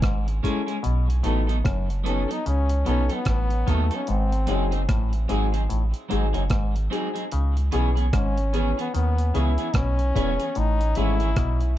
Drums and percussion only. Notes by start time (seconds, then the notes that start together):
0.02 kick, cross-stick, closed hi-hat
0.28 closed hi-hat
0.44 kick, closed hi-hat
0.68 closed hi-hat
0.84 closed hi-hat
1.10 closed hi-hat
1.24 closed hi-hat
1.49 closed hi-hat
1.65 kick, cross-stick, closed hi-hat
1.90 closed hi-hat
2.06 closed hi-hat
2.31 closed hi-hat
2.46 closed hi-hat
2.69 closed hi-hat
2.86 closed hi-hat
3.10 closed hi-hat
3.25 kick, cross-stick, closed hi-hat
3.50 closed hi-hat
3.68 kick, closed hi-hat
3.91 closed hi-hat
4.07 closed hi-hat
4.32 closed hi-hat
4.47 closed hi-hat
4.72 closed hi-hat
4.89 kick, cross-stick, closed hi-hat
5.13 closed hi-hat
5.29 closed hi-hat
5.54 closed hi-hat
5.70 closed hi-hat
5.94 closed hi-hat
6.11 closed hi-hat
6.34 closed hi-hat
6.50 kick, cross-stick, closed hi-hat
6.76 closed hi-hat
6.93 closed hi-hat
7.16 closed hi-hat
7.32 closed hi-hat
7.57 closed hi-hat
7.72 closed hi-hat
7.97 closed hi-hat
8.13 kick, cross-stick, closed hi-hat
8.37 closed hi-hat
8.54 closed hi-hat
8.79 closed hi-hat
8.95 closed hi-hat
9.18 closed hi-hat
9.35 closed hi-hat
9.58 closed hi-hat
9.74 kick, cross-stick, closed hi-hat
9.99 closed hi-hat
10.16 kick, closed hi-hat
10.40 closed hi-hat
10.55 closed hi-hat
10.81 closed hi-hat
10.95 closed hi-hat
11.20 closed hi-hat
11.36 kick, cross-stick, closed hi-hat
11.61 closed hi-hat